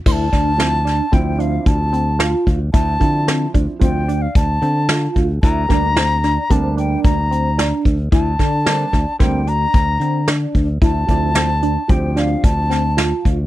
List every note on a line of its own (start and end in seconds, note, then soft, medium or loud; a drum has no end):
0.06 0.28 D2 medium
0.06 0.26 E4 medium
0.06 0.13 C6 loud
0.06 kick loud
0.06 crash medium
0.12 1.15 A5 loud
0.32 0.99 D2 medium
0.32 0.52 D4 medium
0.32 kick medium
0.32 snare soft
0.32 closed hi-hat medium
0.58 0.77 F3 medium
0.58 0.78 C4 medium
0.58 0.79 C4 medium
0.58 0.78 E4 medium
0.58 snare medium
0.58 closed hi-hat medium
0.85 1.05 D4 medium
0.85 snare soft
0.85 closed hi-hat medium
1.12 1.57 D2 medium
1.12 1.88 F3 medium
1.12 1.32 C4 medium
1.12 1.88 C4 medium
1.12 1.88 E4 medium
1.12 1.42 G5 medium
1.12 kick medium
1.12 closed hi-hat medium
1.39 1.79 D4 medium
1.39 1.68 F5 medium
1.39 closed hi-hat medium
1.66 2.33 D2 medium
1.66 2.47 A5 medium
1.66 kick loud
1.66 closed hi-hat medium
1.93 2.13 C4 medium
1.93 closed hi-hat medium
2.19 2.59 F4 medium
2.19 snare medium
2.19 closed hi-hat medium
2.47 2.69 D2 medium
2.47 kick medium
2.47 closed hi-hat medium
2.73 2.96 D2 medium
2.73 2.93 E4 medium
2.73 3.50 A5 loud
2.73 kick loud
2.73 closed hi-hat medium
3.00 3.45 D3 medium
3.00 3.75 F3 medium
3.00 3.76 C4 soft
3.00 3.20 D4 medium
3.00 3.76 E4 medium
3.00 kick medium
3.00 closed hi-hat medium
3.28 3.47 C4 medium
3.28 snare medium
3.28 closed hi-hat medium
3.54 3.66 D2 medium
3.54 3.74 D4 medium
3.54 kick medium
3.54 closed hi-hat medium
3.80 4.26 D2 medium
3.80 3.99 F3 medium
3.80 4.00 C4 medium
3.80 4.01 C4 medium
3.80 4.00 F4 medium
3.80 4.23 G5 medium
3.80 kick medium
3.80 closed hi-hat medium
4.08 4.48 D4 medium
4.08 closed hi-hat medium
4.22 4.37 F5 medium
4.35 4.57 D2 medium
4.35 5.16 A5 medium
4.35 kick loud
4.35 closed hi-hat medium
4.62 5.06 D3 medium
4.62 4.82 C4 medium
4.62 closed hi-hat medium
4.89 5.29 F4 medium
4.89 snare loud
4.89 closed hi-hat medium
5.16 5.38 D2 medium
5.16 kick medium
5.16 closed hi-hat medium
5.42 5.65 D2 loud
5.42 5.63 E4 medium
5.42 6.53 A#5 loud
5.42 kick loud
5.42 closed hi-hat medium
5.68 6.37 D2 medium
5.68 5.88 G3 medium
5.68 5.88 A#3 medium
5.68 5.88 D4 medium
5.68 5.90 D4 medium
5.68 kick medium
5.68 snare soft
5.68 closed hi-hat medium
5.96 6.17 C4 medium
5.96 snare medium
5.96 closed hi-hat medium
6.23 6.43 D4 medium
6.23 snare soft
6.23 closed hi-hat medium
6.49 6.95 D2 medium
6.49 7.25 G3 medium
6.49 7.25 A#3 medium
6.49 6.70 C4 medium
6.49 7.26 D4 medium
6.49 6.77 A5 medium
6.49 kick medium
6.49 closed hi-hat medium
6.77 7.17 D4 medium
6.77 7.02 G5 medium
6.77 closed hi-hat medium
7.04 7.71 D2 medium
7.04 7.81 A#5 medium
7.04 kick loud
7.04 closed hi-hat medium
7.31 7.51 C4 medium
7.31 closed hi-hat medium
7.58 7.98 D4 medium
7.58 snare loud
7.58 closed hi-hat medium
7.85 8.08 D2 medium
7.85 kick medium
7.85 closed hi-hat medium
8.12 8.34 D2 medium
8.12 8.32 E4 medium
8.12 9.16 A5 loud
8.12 kick loud
8.12 closed hi-hat medium
8.39 8.84 D3 medium
8.39 8.59 D4 medium
8.39 kick medium
8.39 snare soft
8.39 closed hi-hat medium
8.65 8.84 G3 medium
8.65 8.85 A#3 medium
8.65 8.86 C4 medium
8.65 8.85 D4 medium
8.65 snare loud
8.65 closed hi-hat medium
8.93 9.04 D2 medium
8.93 9.13 D4 medium
8.93 kick medium
8.93 snare soft
8.93 closed hi-hat medium
9.19 9.65 D2 loud
9.19 9.38 G3 medium
9.19 9.39 A#3 medium
9.19 9.39 C4 medium
9.19 9.50 G5 medium
9.19 kick medium
9.19 snare soft
9.19 closed hi-hat medium
9.47 9.87 D4 medium
9.47 10.28 A#5 loud
9.47 closed hi-hat medium
9.74 9.96 D2 medium
9.74 kick loud
9.74 closed hi-hat medium
10.00 10.45 D3 medium
10.00 10.21 C4 medium
10.00 closed hi-hat medium
10.28 10.68 D4 medium
10.28 snare loud
10.28 closed hi-hat medium
10.55 10.77 D2 medium
10.55 kick medium
10.55 closed hi-hat medium
10.81 11.04 D2 medium
10.81 11.02 E4 medium
10.81 11.93 A5 loud
10.81 kick loud
10.81 closed hi-hat medium
11.07 11.76 D2 medium
11.07 11.46 F3 medium
11.07 11.46 C4 medium
11.07 11.30 D4 medium
11.07 11.46 E4 medium
11.07 kick medium
11.07 closed hi-hat medium
11.35 11.56 C4 medium
11.35 snare medium
11.35 closed hi-hat medium
11.62 11.83 D4 medium
11.62 closed hi-hat medium
11.88 12.35 D2 medium
11.88 12.65 F3 medium
11.88 12.65 C4 medium
11.88 12.10 C4 medium
11.88 12.65 G4 medium
11.88 12.20 G5 medium
11.88 kick medium
11.88 closed hi-hat medium
12.16 12.56 D4 medium
12.16 12.46 F5 medium
12.16 snare soft
12.16 closed hi-hat medium
12.44 13.11 D2 medium
12.44 13.25 A5 medium
12.44 kick loud
12.44 closed hi-hat medium
12.70 12.90 C4 medium
12.70 snare soft
12.70 closed hi-hat medium
12.97 13.37 F4 medium
12.97 snare loud
12.97 closed hi-hat medium
13.25 13.47 D2 medium
13.25 kick medium
13.25 closed hi-hat medium